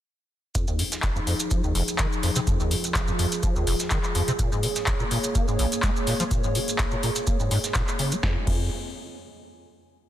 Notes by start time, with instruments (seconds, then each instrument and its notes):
0.55 acid bass F2, analog synth pad F3 D#4 G#4, kick, closed hi-hat, shaker, maracas
0.68 acid bass D#2, maracas
0.79 acid bass G#2, open hi-hat, shaker
0.92 snare, closed hi-hat, maracas
1.03 acid bass F1, kick, snare, clap, closed hi-hat, shaker, maracas
1.16 acid bass F2, maracas
1.27 acid bass F2, open hi-hat, shaker
1.40 closed hi-hat, maracas
1.50 acid bass F3, kick, closed hi-hat, maracas, shaker
1.64 acid bass D#2, maracas
1.75 acid bass F1, open hi-hat, shaker
1.88 closed hi-hat, maracas
1.99 acid bass D#3, kick, snare, clap, closed hi-hat, maracas, shaker
2.12 maracas
2.23 acid bass F2, snare, open hi-hat, shaker
2.36 acid bass C3, closed hi-hat, maracas
2.47 acid bass F2, analog synth pad F4, kick, closed hi-hat, shaker, maracas
2.60 acid bass D#2, maracas
2.71 acid bass G#2, open hi-hat, shaker
2.84 closed hi-hat, maracas
2.95 acid bass F1, kick, snare, clap, closed hi-hat, shaker, maracas
3.08 acid bass F2, maracas
3.19 acid bass F2, open hi-hat, shaker
3.32 closed hi-hat, maracas
3.43 acid bass F3, kick, closed hi-hat, maracas, shaker
3.56 acid bass D#2, maracas
3.67 acid bass F1, open hi-hat, shaker
3.79 snare, closed hi-hat, maracas
3.91 acid bass D#3, kick, snare, clap, closed hi-hat, maracas, shaker
4.03 clap, maracas
4.15 acid bass F2, open hi-hat, shaker
4.28 acid bass C3, closed hi-hat, maracas
4.39 acid bass A#2, analog synth pad A#3 C#5, kick, closed hi-hat, shaker, maracas
4.52 acid bass G#2, maracas
4.63 acid bass C#3, open hi-hat, shaker
4.76 snare, closed hi-hat, maracas
4.87 acid bass A#1, kick, snare, clap, closed hi-hat, maracas, shaker
5.00 acid bass A#2, maracas
5.11 acid bass A#2, open hi-hat, shaker
5.24 closed hi-hat, maracas
5.35 acid bass A#3, kick, closed hi-hat, shaker, maracas
5.48 acid bass G#2, maracas
5.59 acid bass A#1, open hi-hat, shaker
5.72 closed hi-hat, maracas
5.83 acid bass G#3, kick, snare, clap, closed hi-hat, shaker, maracas
5.96 maracas
6.07 acid bass A#2, snare, open hi-hat, shaker
6.20 acid bass F3, closed hi-hat, maracas
6.31 acid bass A#2, kick, closed hi-hat, shaker, maracas
6.44 acid bass G#2, maracas
6.55 acid bass C#3, open hi-hat, shaker
6.68 closed hi-hat, maracas
6.79 acid bass A#1, kick, snare, clap, closed hi-hat, shaker, maracas
6.91 acid bass A#2, maracas
7.03 acid bass A#2, open hi-hat, shaker
7.16 closed hi-hat, maracas
7.27 acid bass A#3, kick, closed hi-hat, maracas, shaker
7.40 acid bass G#2, maracas
7.51 acid bass G#2, open hi-hat, shaker
7.64 snare, closed hi-hat, maracas
7.75 acid bass A#2, kick, snare, clap, closed hi-hat, maracas, shaker
7.87 clap, maracas
7.99 acid bass C#3, open hi-hat, shaker
8.12 acid bass A#3, closed hi-hat, maracas
8.23 acid bass F2, analog synth pad F4 D#5 G#5, kick, snare
8.47 acid bass F2, kick, crash